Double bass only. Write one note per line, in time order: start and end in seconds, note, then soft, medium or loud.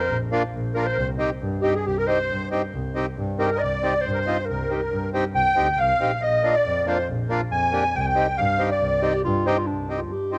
0.09 0.22 A#1 loud
0.53 0.80 A#1 loud
0.97 1.10 C2 medium
1.42 1.68 G2 loud
1.86 1.99 C2 medium
2.30 2.56 G2 medium
2.73 2.99 C2 medium
3.17 3.43 G2 loud
3.61 3.87 C2 medium
4.05 4.31 G2 medium
4.49 4.75 C2 medium
4.91 5.17 G2 medium
5.35 5.48 C2 loud
5.58 5.77 D2 medium
5.78 5.98 C2 medium
6.00 6.20 A#1 medium
6.22 6.48 A#1 medium
6.65 6.91 F2 medium
7.08 7.34 A#1 medium
7.51 7.77 F2 medium
7.95 8.21 C2 medium
8.39 8.64 G2 loud
8.81 9.07 C2 medium
9.25 9.51 G2 loud
9.68 10.13 C2 medium
10.11 10.37 G2 medium